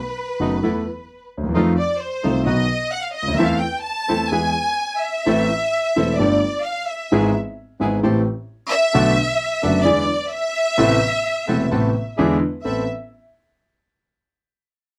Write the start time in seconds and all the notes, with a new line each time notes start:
Already playing: B4
0.40 F#1 F#2 D#3 A3 B3 D#4 F#4
0.63 E2 E3 A3 B3 E4 A4
1.37 D2
1.43 D#2
1.49 E2
1.54 F2 D#3 F3 A3 C4 D#4 F4
1.78 D5
1.99 C5
2.23 C2 C3 D#3 A3 C4 D#4 F4
2.46 B1 B2 D#3 F#3 B3 D#4 F#4 D#5
2.92 F#5
3.03 F5
3.13 D#5
3.23 C#2
3.28 D2
3.34 D#2 E3 C4 E4 A4 E5
3.39 E2 E3 A3 C4 A4
3.45 F5
3.59 G5
3.81 A5
4.08 E2 E3 A3 C4 E4 A4
4.28 B3 E4 G#4 G#5
4.32 E2 E3 G#3 B3 G#4
4.98 E5
5.25 A1 A2 E3 A3 C4 E4 A4
5.96 E1 E2 E3 A3 C4 E4 A4
6.16 G1 G2 G3 A3 D4 G4 A4 D5
6.63 F5
6.86 E5
7.11 G#1 G#2 E3 G#3 B3 E4 G#4
7.80 G#1 G#2 E3 G#3 B3 E4 G#4
8.03 A1 A2 E3 A3 C4 G4 A4
8.69 E5
8.93 B1 B2 D3 A3 B3 D4 F#4 A4
9.62 F#1 F#2 D3 A3 B3 D4 F#4 A4
9.83 E2 D3 E3 G#3 B3 D4 E4 G#4 D5
10.29 E5
10.77 A1 A2 C3 A3 B3 C4 E4 A4
11.47 E1 E2 C3 A3 B3 C4 E4 A4
11.70 A1 A2 C3 A3 B3 C4 E4 A4
12.17 E2 D3 E3 G#3 B3 D4 E4 G#4
12.64 A1 B3 C4 A4 B4 E5